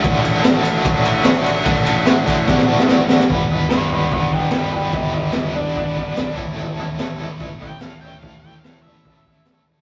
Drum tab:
RD |x-x-x-x-x-x-x-x-|x-x-x-x---------|----------------|----------------|
SD |----o-------o---|----o---oo-oo-oo|----o-------o---|----o-------o---|
FT |----------------|----------------|o-o-o-o-o-o-o-o-|o-o-o-o-o-o-o-o-|
BD |o-------o-------|o-----o-o-------|o-------o-o-----|o-------o-o---o-|

RD |----------------|----------------|
SD |----o-------o---|----o-------o---|
FT |o-o-o-o-o-o-o-o-|o-o-o-o-o-o-o-o-|
BD |--------o-o-----|o-------o-o-----|